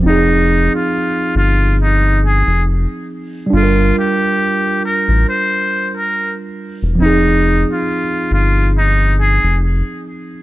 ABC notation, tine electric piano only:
X:1
M:4/4
L:1/8
Q:"Swing 16ths" 1/4=69
K:Fdor
V:1 name="Tine electric piano"
[F,CEA]8 | [G,DF=AB]8 | [F,CEA]8 |]